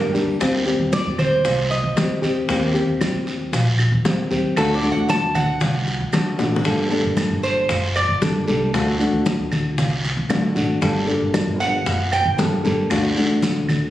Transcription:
Already playing: nylon-string guitar G3 A#3 D4 G4, cuban tres A#4
0.13 upright bass D2, nylon-string guitar G3 A#3 D4 G4, short guiro, maracas
0.39 upright bass D#2, nylon-string guitar D#3 G3 C4 G4, high bongo, high conga, long guiro, claves, maracas
0.66 nylon-string guitar G3 C4 G4, high bongo, high conga, maracas
0.79 upright bass D#2
0.93 cuban tres D5, high bongo, high conga, short guiro, maracas
1.06 upright bass D#2
1.18 cuban tres C5, high bongo, high conga, low conga, short guiro, claves, maracas
1.44 upright bass C2, muted nylon-string guitar stroke, high bongo, high conga, long guiro, maracas
1.71 cuban tres D#5, high bongo, high conga, maracas
1.83 upright bass D#2
1.96 nylon-string guitar D#3 G3 C4 G4, high bongo, low bongo, high conga, short guiro, claves, maracas
2.22 upright bass D#2, nylon-string guitar G3 C4 G4, short guiro, maracas
2.48 upright bass D#2, nylon-string guitar D#3 A#3 C4 G4, high bongo, high conga, long guiro, maracas
2.74 nylon-string guitar A#3 C4 G4, high bongo, high conga, maracas
2.88 upright bass D#2
3.01 high bongo, high conga, short guiro, claves, maracas
3.14 upright bass D#2
3.27 high bongo, high conga, short guiro, maracas
3.53 upright bass A#1, muted nylon-string guitar stroke, high bongo, high conga, long guiro, maracas
3.79 high bongo, high conga, claves, maracas
3.92 upright bass D#2
4.05 nylon-string guitar D#3 A#3 C4 G4, high bongo, low bongo, high conga, short guiro, maracas
4.31 upright bass D#2, nylon-string guitar A#3 C4 G4, high conga, short guiro, maracas
4.56 upright bass D2, nylon-string guitar D3 A3 D4 F#4, cuban tres A4, high bongo, long guiro, claves, maracas
4.75 cuban tres D5
4.83 nylon-string guitar A3 D4 F#4, high bongo, high conga, maracas
4.92 cuban tres F#5
4.96 upright bass D2
5.09 cuban tres A5, high bongo, high conga, short guiro, maracas
5.22 upright bass D2
5.35 cuban tres F#5, high bongo, high conga, low conga, short guiro, claves, maracas
5.61 upright bass C2, muted nylon-string guitar stroke, high bongo, high conga, low conga, long guiro, maracas
5.87 high bongo, high conga, maracas
6.00 upright bass D2
6.13 nylon-string guitar D3 A3 D4 F#4, high bongo, low bongo, high conga, short guiro, claves, maracas
6.38 upright bass A1, nylon-string guitar A3 D4 F#4, high bongo, short guiro, maracas
6.56 low bongo
6.64 upright bass G1, nylon-string guitar D3 G3 A#3 D4 A4, high bongo, long guiro, maracas
6.90 nylon-string guitar G3 A#3 D4 A4, high bongo, high conga, maracas
7.04 upright bass G1
7.17 high bongo, high conga, short guiro, claves, maracas
7.30 upright bass G1
7.43 cuban tres C5, high bongo, high conga, short guiro, maracas
7.69 upright bass F#1, muted nylon-string guitar stroke, high bongo, high conga, long guiro, maracas
7.96 cuban tres D5, high bongo, high conga, claves, maracas
8.09 upright bass G1
8.21 nylon-string guitar G3 A#3 D4 A4, high bongo, low bongo, high conga, short guiro, maracas
8.48 upright bass C2, nylon-string guitar G3 A#3 D4 A4, high conga, short guiro, maracas
8.73 upright bass D2, nylon-string guitar D3 A3 D4 F#4, high bongo, high conga, long guiro, claves, maracas
9.00 nylon-string guitar A3 D4 F#4, high bongo, high conga, maracas
9.13 upright bass D2
9.26 high bongo, high conga, short guiro, maracas
9.39 upright bass D2
9.52 high bongo, high conga, low conga, short guiro, claves, maracas
9.77 upright bass C2, muted nylon-string guitar stroke, high bongo, high conga, low conga, long guiro, maracas
10.04 high bongo, high conga, maracas
10.17 upright bass D2
10.29 nylon-string guitar D3 A3 D4 F#4, high bongo, low bongo, high conga, short guiro, claves, maracas
10.55 upright bass G#1, nylon-string guitar A3 D4 F#4, short guiro, maracas
10.81 upright bass G1, nylon-string guitar D3 G3 A#3 D4 A4, high bongo, high conga, long guiro, maracas
11.07 nylon-string guitar G3 A#3 D4 A4, high bongo, high conga, maracas
11.21 upright bass G1
11.34 high bongo, high conga, short guiro, claves, maracas
11.47 upright bass G1
11.60 cuban tres F#5, high bongo, high conga, short guiro, maracas
11.86 upright bass F#1, muted nylon-string guitar stroke, high bongo, high conga, long guiro, maracas
12.12 cuban tres G5, high bongo, high conga, claves, maracas
12.25 upright bass G1
12.38 nylon-string guitar G3 A#3 D4 A4, high bongo, low bongo, high conga, short guiro, maracas
12.64 upright bass G1, nylon-string guitar G3 A#3 D4 A4, high conga, short guiro, maracas
12.90 upright bass D2, nylon-string guitar D3 A3 D4 F#4, high bongo, high conga, long guiro, claves, maracas
13.17 nylon-string guitar A3 D4 F#4, high bongo, high conga, maracas
13.30 upright bass D2
13.42 high bongo, high conga, short guiro, maracas
13.56 upright bass D2
13.69 high bongo, high conga, low conga, short guiro, claves, maracas

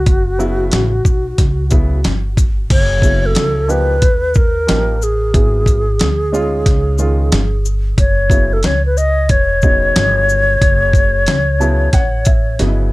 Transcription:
Already playing: alto flute F#4
0.06 upright bass F#1, kick, closed hi-hat
0.39 upright piano C#3 F#3 B3 E4, shaker
0.71 upright bass A1, snare, closed hi-hat
1.05 upright bass B1, kick, shaker
1.38 upright bass C#2, kick, snare, closed hi-hat
1.70 upright piano C#3 F#3 B3 E4, kick, closed hi-hat, shaker
2.04 upright bass G1, snare, closed hi-hat
2.37 kick, closed hi-hat, shaker
2.70 upright bass F#1, alto flute C#5, kick, closed hi-hat, crash
3.02 upright piano C#3 F#3 B3 E4, kick, closed hi-hat, shaker
3.26 alto flute A4
3.35 upright bass C#2, snare, closed hi-hat
3.68 upright piano F3 A#3 D#4 G4, alto flute B4, shaker
4.02 upright bass D#2, kick, closed hi-hat
4.34 alto flute A#4, kick, shaker
4.67 upright bass A1, upright piano F3 A#3 D#4 G4, snare, closed hi-hat
5.02 alto flute G#4, shaker
5.33 upright bass G#1, upright piano F#3 B3 E4 G#4, kick, closed hi-hat
5.66 kick, closed hi-hat, shaker
5.99 upright bass D2, snare, closed hi-hat
6.32 upright piano G#3 C#4 D#4 F4, shaker
6.66 upright bass C#2, kick, snare, closed hi-hat
6.98 upright piano D#3 G#3 C#4 F4, shaker
7.32 upright bass G1, snare, closed hi-hat
7.65 shaker
7.98 upright bass F#1, alto flute C#5, kick, closed hi-hat
8.30 upright piano C#3 F#3 B3 E4, kick, closed hi-hat, shaker
8.53 alto flute A4
8.63 upright bass C#2, alto flute C#5, snare, closed hi-hat
8.86 alto flute B4
8.97 alto flute D#5, shaker
9.29 upright bass E1, alto flute C#5, kick, closed hi-hat
9.62 upright piano C#3 F#3 B3 D#4, kick, shaker
9.96 upright bass G1, snare, closed hi-hat
10.29 shaker
10.62 upright bass F#1, kick, closed hi-hat
10.93 kick, closed hi-hat, shaker
11.26 upright bass C#2, snare, closed hi-hat
11.60 upright piano C#3 F#3 B3 E4 A5, shaker
11.93 upright bass A1, upright piano F#5, kick, snare, closed hi-hat
12.25 upright piano E5, kick, closed hi-hat, shaker
12.59 upright bass G1, upright piano C#3 F#3 B3 D#4 D#5, snare, closed hi-hat
12.67 upright piano E4

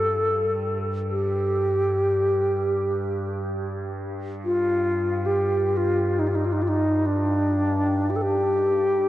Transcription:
Already playing: synth drone G2, alto flute A4, crotales D7
1.10 alto flute G4
4.45 alto flute F4
5.26 alto flute G4
5.77 alto flute F4
6.19 alto flute D#4
6.28 alto flute F4
6.35 alto flute D#4
6.46 alto flute F4
6.52 alto flute D#4
6.63 alto flute F4
6.69 alto flute D#4
7.06 alto flute D4
8.10 alto flute G4
8.16 alto flute A4
8.22 alto flute G4

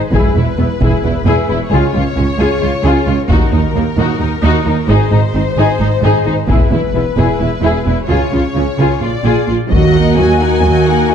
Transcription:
Already playing: violin section C5
0.12 double bass section E1, cello section E2, viola section E4, violin section G#4 B4, taiko
0.35 double bass section E1, cello section E2, violin section E4, viola section E4
0.58 double bass section E1, cello section E2, violin section B3, viola section E4
0.81 double bass section E1, cello section E2, viola section E4, violin section G#4, taiko
1.04 double bass section E1, cello section E2, viola section E4, violin section E4
1.26 double bass section E1, cello section E2, viola section E4, violin section G#4
1.49 double bass section E1, cello section E2, violin section E4, viola section E4
1.70 cello section C#2, double bass section C#2, viola section F4, violin section G#4 C#5
1.94 cello section C#2, double bass section C#2, violin section F4, viola section F4
2.16 cello section C#2, double bass section C#2, violin section C#4, viola section F4
2.39 cello section C#2, double bass section C#2, viola section F4, violin section G#4
2.61 cello section C#2, double bass section C#2, violin section F4, viola section F4
2.83 cello section C#2, double bass section C#2, viola section F4, violin section G#4
3.06 cello section C#2, double bass section C#2, violin section F4, viola section F4
3.28 cello section D#2, double bass section D#2, viola section D#4, violin section F#4 A#4, taiko
3.52 cello section D#2, double bass section D#2, violin section D#4, viola section D#4
3.74 double bass section D#2, cello section D#2, violin section A#3, viola section D#4
3.97 cello section D#2, double bass section D#2, viola section D#4, violin section F#4
4.20 cello section D#2, double bass section D#2, violin section D#4, viola section D#4
4.43 cello section D#2, double bass section D#2, viola section D#4, violin section F#4
4.65 cello section D#2, double bass section D#2, viola section D#4, violin section D#4
4.88 double bass section G#1, cello section G#2, viola section D#4, violin section G#4 C5
5.10 double bass section G#1, cello section G#2, violin section D#4, viola section D#4
5.33 double bass section G#1, cello section G#2, violin section C4, viola section D#4
5.57 double bass section G#1, cello section G#2, viola section D#4, violin section G#4
5.79 double bass section G#1, cello section G#2, violin section D#4, viola section D#4
6.02 double bass section G#1, cello section G#2, viola section D#4, violin section G#4
6.25 double bass section G#1, cello section G#2, violin section D#4, viola section D#4
6.48 double bass section E1, cello section E2, viola section E4, violin section G#4 B4, taiko
6.71 double bass section E1, cello section E2, violin section E4, viola section E4
6.94 double bass section E1, cello section E2, violin section B3, viola section E4
7.17 double bass section E1, cello section E2, viola section E4, violin section G#4
7.40 double bass section E1, cello section E2, viola section E4, violin section E4
7.62 double bass section E1, cello section E2, viola section E4, violin section G#4
7.86 double bass section E1, cello section E2, viola section E4, violin section E4
8.09 double bass section C#2, cello section C#3, viola section F4, violin section G#4 C#5
8.32 double bass section C#2, cello section C#3, viola section F4, violin section F4
8.55 double bass section C#2, cello section C#3, violin section C#4, viola section F4
8.79 double bass section C#2, cello section C#3, viola section F4, violin section G#4
9.01 double bass section A#1, cello section A#2, violin section F4 D5, viola section F4
9.24 double bass section A#1, cello section A#2, viola section F4, violin section G#4
9.47 double bass section A#1, cello section A#2, violin section F4, viola section F4
9.71 cello section D#2, double bass section D#2, viola section F#3 F#4, french horn section A#3 F#4, violin section F#4 D#5, taiko
9.93 viola section A#3 D#4, violin section A#4 F#5
10.17 cello section D#2, double bass section D#2, viola section F#3 F#4, violin section F#4 D#5 G#5
10.40 viola section A#3 D#4, violin section A#4 F#5
10.63 cello section D#2, double bass section D#2, viola section F#3 F#4, violin section F#4 D#5
10.86 viola section A#3 D#4, violin section A#4 F#5
11.09 viola section F#3 F#4, violin section F#4 D#5

